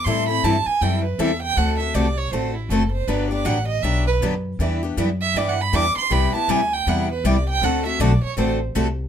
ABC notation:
X:1
M:4/4
L:1/16
Q:"Swing" 1/4=159
K:Dmix
V:1 name="Violin"
c'2 b2 a2 _a2 g2 B2 e2 g2 | f2 e2 d2 ^c2 =c2 E2 A2 c2 | B2 d2 f2 _e2 =e2 B2 z4 | z6 e2 (3d2 f2 b2 d'2 c'2 |
b2 a2 _a2 g2 f2 B2 d2 g2 | f2 e2 d2 ^c2 =c2 z6 |]
V:2 name="Steel-string acoustic guitar"
[E,G,CEA]2 [CEA]2 [E,G,CEA] z3 [E,G,CEA]2 z2 [E,G,CEA] z3 | [D,A,CFA]2 [CFA]2 [D,A,CFA] z3 [D,A,CFA]2 z2 [D,A,CFA] z3 | [D,F,B,DG]2 [B,DG]2 [D,F,B,DG] z3 [D,F,B,DG]2 z2 [D,F,B,DG] z3 | [E,B,DG]2 [B,DG]2 [E,B,DG] z3 [E,B,DG]2 z2 [E,B,DG] z3 |
[C,G,B,EG]2 [B,EG]2 [C,G,B,EG] z3 [C,G,B,EG]2 z2 [C,G,B,EG] z3 | [D,A,CFA]2 [CFA]2 [D,A,CFA] z3 [D,A,CFA]2 z2 [D,A,CFA] z3 |]
V:3 name="Steel-string acoustic guitar"
[E,G,CEA]2 z2 [E,G,CEA] z3 [E,G,CEA]2 z2 [E,G,CEA] z3 | [D,A,CFA]2 z2 [D,A,CFA] z3 [D,A,CFA]2 z2 [D,A,CFA] z3 | [D,F,B,DG]2 z2 [D,F,B,DG] z3 [D,F,B,DG]2 z2 [D,F,B,DG] z3 | [E,G,DEB]2 z2 [E,G,DEB] z3 [E,G,DEB]2 z2 [E,G,DEB] z3 |
[C,G,B,EG]2 z2 [C,G,B,EG] z3 [C,G,B,EG]2 z2 [C,G,B,EG] z3 | [D,A,CFA]2 z2 [D,A,CFA] z3 [D,A,CFA]2 z2 [D,A,CFA] z3 |]
V:4 name="Upright bass" clef=bass
A,,4 G,,2 z2 F,,4 E,,4 | D,,4 C,,4 A,,,4 F,,,4 | G,,,4 A,,,4 B,,,4 F,,4 | E,,4 F,,4 G,,4 E,,2 z2 |
C,,2 z2 D,,4 E,,4 C,,4 | D,,4 B,,,2 z2 A,,,4 C,,4 |]